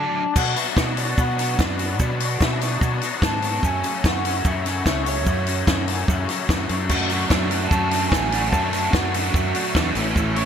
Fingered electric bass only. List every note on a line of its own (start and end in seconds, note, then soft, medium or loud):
0.36 0.54 B2 medium
0.76 1.13 B2 medium
1.18 1.54 B2 loud
1.59 2.00 F#2 loud
2.00 2.36 B2 medium
2.41 2.77 B2 medium
2.81 3.00 B2 loud
3.22 3.59 G#2 loud
3.63 3.81 F#2 medium
4.04 4.40 F#2 loud
4.45 4.81 F#2 loud
4.86 5.26 C#2 loud
5.26 5.63 F#2 loud
5.67 6.04 F#2 loud
6.08 6.26 F#2 loud
6.49 6.67 F#2 medium
6.70 7.24 F#2 loud
7.30 7.67 F#2 loud
7.71 8.07 F#2 loud
8.12 8.52 A1 medium
8.52 8.89 F#2 loud
8.93 9.30 F#2 medium
9.34 9.52 F#2 loud
9.75 9.93 E2 medium
9.95 10.45 A1 loud